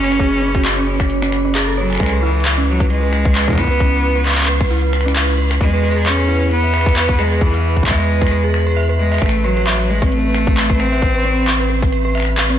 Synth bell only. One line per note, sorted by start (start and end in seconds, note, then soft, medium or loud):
0.00 0.42 C#4 loud
0.00 0.55 F#4 medium
0.00 0.19 G#4 medium
0.00 0.87 C#5 medium
0.19 0.30 G#4 medium
0.42 0.53 C#4 medium
0.55 0.63 F#4 medium
0.65 0.75 C#4 medium
0.87 0.98 C#5 medium
1.00 1.09 C#4 medium
1.22 1.31 C#4 loud
1.45 1.53 C#4 medium
1.55 1.66 G#4 loud
1.67 1.77 A4 loud
1.77 1.84 C#5 medium
1.90 1.95 G#5 medium
2.00 2.11 B4 loud
2.13 2.21 B4 loud
2.23 2.33 E4 medium
2.45 2.56 B4 medium
2.58 2.66 C#4 medium
2.90 3.01 B4 medium
3.03 3.12 B4 medium
3.25 3.34 B4 medium
3.35 3.46 B4 loud
3.48 3.56 E4 medium
3.71 3.79 B4 medium
3.80 3.91 C#4 medium
4.16 4.24 B4 medium
4.25 4.38 B4 medium
4.48 4.59 B4 loud
4.61 4.69 B4 loud
4.71 4.81 E4 medium
4.93 5.04 B4 medium
5.06 5.14 C#4 medium
5.38 5.49 B4 medium
5.51 5.60 B4 medium
5.73 5.82 B4 loud
5.83 5.94 B4 loud
5.96 6.05 G#4 medium
6.19 6.27 B4 medium
6.28 6.39 E4 medium
6.64 6.72 E5 medium
6.74 6.86 B4 medium
6.96 7.07 B4 loud
7.09 7.17 B4 loud
7.19 7.30 G#4 medium
7.41 7.52 B4 medium
7.54 7.62 E4 medium
7.86 7.97 E5 medium
7.99 8.08 B4 medium
8.22 8.30 B4 loud
8.31 8.42 B4 loud
8.44 8.53 G#4 medium
8.67 8.76 B4 loud
8.77 8.89 E5 loud
8.89 8.94 B4 medium
8.99 9.10 B4 medium
9.12 9.17 E5 medium
9.22 9.34 B4 medium
9.44 9.55 B4 loud
9.57 9.65 B4 loud
9.67 9.79 E5 medium
9.89 10.00 B4 medium
10.02 10.11 C4 medium
10.35 10.45 B4 medium
10.47 10.57 B4 medium
10.70 10.78 B4 loud
10.80 10.90 B4 loud
10.92 11.02 E5 medium
11.15 11.23 B4 medium
11.25 11.36 C4 medium
11.60 11.68 B4 medium
11.70 11.82 B4 medium
11.92 12.03 B4 loud
12.05 12.14 B4 loud
12.15 12.27 E5 medium
12.37 12.48 B4 medium
12.50 12.59 C4 medium